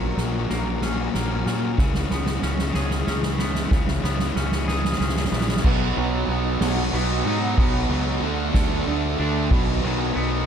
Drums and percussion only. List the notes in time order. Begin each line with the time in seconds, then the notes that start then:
0.17 snare, ride
0.50 snare, ride
0.82 snare, ride
1.14 snare, ride
1.46 snare, ride
1.78 kick, snare
1.94 snare
2.10 snare
2.26 snare
2.42 snare
2.59 snare
2.74 snare
2.91 snare
3.07 snare
3.23 snare
3.39 snare
3.55 snare
3.71 kick, snare
3.88 snare
4.04 snare
4.19 snare
4.36 snare
4.52 snare
4.68 snare
4.85 snare
4.92 snare
5.01 snare
5.09 snare
5.16 snare
5.25 snare
5.33 snare
5.41 snare
5.49 snare
5.57 snare
5.64 kick, crash
5.97 ride
6.29 ride
6.61 snare, ride
6.93 ride
7.26 ride
7.58 kick, ride
7.90 ride
8.22 ride
8.54 kick, snare, ride
8.86 ride
9.19 ride
9.51 kick, ride
9.83 ride
10.15 ride